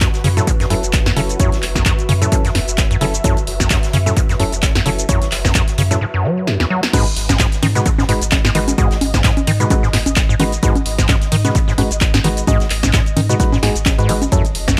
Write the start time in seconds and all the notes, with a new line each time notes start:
Already playing: F#4 B4
0.01 F#2, kick, snare, clap, closed hi-hat, shaker
0.14 snare, closed hi-hat, shaker
0.24 F#2 C#3, snare, closed hi-hat, open hi-hat
0.37 A2 F#3 C#4 E4 A4, snare, closed hi-hat, shaker
0.47 G#2, kick, closed hi-hat, shaker
0.60 F#2 E5, snare, closed hi-hat, shaker
0.70 F#1 F#2 F#3 C#4 E4 A4, closed hi-hat, open hi-hat
0.83 F#1, closed hi-hat, shaker
0.93 kick, snare, clap, closed hi-hat, shaker
1.06 F#2, snare, closed hi-hat, shaker
1.16 F#1 C#3 F#3 C#4 E4 A4, closed hi-hat, open hi-hat
1.29 closed hi-hat, shaker
1.39 F#2 F#3 C#4 E4 C#5, kick, closed hi-hat, shaker
1.52 snare, closed hi-hat, shaker
1.62 F#1, clap, closed hi-hat, open hi-hat
1.75 F#2, kick, snare, closed hi-hat, shaker
1.85 F#2, kick, clap, closed hi-hat, shaker
1.99 closed hi-hat, shaker
2.09 F#2 C#3, closed hi-hat, open hi-hat
2.22 A2 F#3 C#4 E4 A4, closed hi-hat, shaker
2.32 G#2 F#3 C#4 E4 A4, kick, closed hi-hat, shaker
2.45 F#2, snare, closed hi-hat, shaker
2.55 F#1 F#2, snare, closed hi-hat, open hi-hat
2.68 F#1, closed hi-hat, shaker
2.78 kick, snare, clap, closed hi-hat, shaker
2.91 F#2, closed hi-hat, shaker
3.01 F#1 C#3 F#3 C#4 E4 A4, closed hi-hat, open hi-hat
3.14 closed hi-hat, shaker
3.24 F#2 F#3 C#4 E4 A4, kick, closed hi-hat, shaker
3.37 closed hi-hat, shaker
3.47 F#1, closed hi-hat, open hi-hat
3.60 F#2, kick, snare, closed hi-hat, shaker
3.70 F#2, kick, snare, clap, closed hi-hat, shaker
3.83 snare, closed hi-hat, shaker
3.93 F#2 C#3, snare, closed hi-hat, open hi-hat
4.06 A2 F#3 C#4 E4 A4, snare, closed hi-hat, shaker
4.17 G#2, kick, closed hi-hat, shaker
4.29 F#2, snare, closed hi-hat, shaker
4.40 F#1 F#2 F#3 C#4 E4 A4, closed hi-hat, open hi-hat
4.52 F#1, closed hi-hat, shaker
4.62 kick, snare, clap, closed hi-hat, shaker
4.75 F#2, snare, closed hi-hat, shaker
4.85 F#1 C#3 F#3 C#4 E4 A4, closed hi-hat, open hi-hat
4.99 closed hi-hat, shaker
5.09 F#2 F#3 C#4 E4 C#5, kick, closed hi-hat, shaker
5.22 snare, closed hi-hat, shaker
5.32 F#1, snare, clap, closed hi-hat, open hi-hat
5.45 F#2, kick, cross-stick, snare, closed hi-hat, shaker
5.54 F#2, kick, snare, clap, closed hi-hat, shaker
5.67 snare, closed hi-hat, shaker
5.78 F#2 C#3, closed hi-hat, open hi-hat
5.91 A2 F#3 C#4 E4 A4, snare, closed hi-hat, shaker
6.01 G#2
6.14 F#2
6.24 F#3
6.47 F#2, snare
6.60 E2, snare
6.70 F#3
6.83 snare
6.93 G#2 G#3 D#4 F#4 B4, kick, closed hi-hat, crash, high conga, shaker
7.06 closed hi-hat, shaker
7.16 G#1 D#5, closed hi-hat, open hi-hat, ride
7.29 G#2, kick, cross-stick, snare, closed hi-hat, high conga, shaker
7.39 G#2, kick, snare, clap, closed hi-hat, shaker
7.52 snare, closed hi-hat, shaker
7.62 G#2 D#3, snare, closed hi-hat, open hi-hat, ride, high conga
7.75 B2 G#3 D#4 F#4 B4, snare, closed hi-hat, shaker
7.86 A2, kick, closed hi-hat, shaker
7.98 G#2, snare, high conga, shaker
8.09 G#1 G#2 G#3 D#4 F#4 B4, closed hi-hat, open hi-hat, ride
8.22 G#1, closed hi-hat, shaker
8.31 kick, snare, clap, closed hi-hat, high conga, shaker
8.45 G#2, snare, shaker
8.55 G#1 D#3 G#3 D#4 F#4 B4, closed hi-hat, open hi-hat, ride
8.68 closed hi-hat, high conga, shaker
8.78 G#2 G#3 D#4 F#4 D#5, kick, closed hi-hat, shaker
8.91 snare, closed hi-hat, shaker
9.01 G#1, closed hi-hat, open hi-hat, ride, high conga
9.14 G#2, kick, cross-stick, snare, closed hi-hat, shaker
9.24 G#2, kick, snare, clap, closed hi-hat, shaker
9.37 closed hi-hat, high conga, shaker
9.47 G#2 D#3, closed hi-hat, open hi-hat, ride
9.60 B2 G#3 D#4 F#4 B4, closed hi-hat, shaker
9.70 A2 G#3 D#4 F#4 B4, kick, closed hi-hat, high conga, shaker
9.83 G#2, snare, shaker
9.93 G#1 G#2, snare, closed hi-hat, open hi-hat, ride
10.06 G#1, closed hi-hat, high conga, shaker
10.16 kick, snare, clap, closed hi-hat, shaker
10.29 G#2, shaker
10.40 G#1 D#3 G#3 D#4 F#4 B4, closed hi-hat, open hi-hat, ride, high conga
10.52 closed hi-hat, shaker
10.63 G#2 G#3 D#4 F#4 B4, kick, closed hi-hat, shaker
10.75 closed hi-hat, high conga, shaker
10.86 G#1, closed hi-hat, open hi-hat, ride
10.98 G#2, kick, cross-stick, snare, closed hi-hat, shaker
11.08 G#2, kick, snare, clap, closed hi-hat, high conga, shaker
11.21 snare, closed hi-hat, shaker
11.32 G#2 D#3, snare, closed hi-hat, open hi-hat, ride
11.45 B2 G#3 D#4 F#4 B4, snare, closed hi-hat, high conga, shaker
11.55 A2, kick, closed hi-hat, shaker
11.68 G#2, snare, shaker
11.78 G#1 G#2 G#3 D#4 F#4 B4, closed hi-hat, open hi-hat, ride, high conga
11.91 G#1, closed hi-hat, shaker
12.01 kick, snare, clap, closed hi-hat, shaker
12.14 G#2, snare, high conga, shaker
12.24 G#1 D#3 G#3 D#4 F#4 B4, closed hi-hat, open hi-hat, ride
12.36 closed hi-hat, shaker
12.47 G#2 G#3 D#4 F#4 D#5, kick, closed hi-hat, high conga, shaker
12.60 snare, closed hi-hat, shaker
12.70 G#1, clap, closed hi-hat, open hi-hat, ride
12.82 G#2, kick, cross-stick, snare, closed hi-hat, high conga, shaker
12.93 G#2, kick, snare, clap, closed hi-hat, shaker
13.06 closed hi-hat, shaker
13.17 G#2 D#3, closed hi-hat, open hi-hat, ride, high conga
13.29 B2 G#3 D#4 F#4 B4, closed hi-hat, shaker
13.40 A2 G#3 D#4 F#4 B4, kick, closed hi-hat, shaker
13.52 G#2, snare, high conga, shaker
13.63 G#1 G#2 G#3 D#4 F#4 G#4, snare, closed hi-hat, open hi-hat, ride
13.76 G#1, closed hi-hat, shaker
13.85 kick, snare, clap, closed hi-hat, high conga, shaker
13.98 G#2 G#3 D#4 F#4 B4, closed hi-hat, shaker
14.09 G#1 G#3 D#4 F#4 B4, closed hi-hat, open hi-hat, ride
14.22 closed hi-hat, high conga, shaker
14.32 F#2 F#3 C#4 E4 F#4 A4, kick, closed hi-hat, high conga, shaker
14.45 closed hi-hat, shaker
14.49 B4
14.55 F#1, closed hi-hat, open hi-hat, ride
14.68 F#2, kick, cross-stick, snare, closed hi-hat, high conga, shaker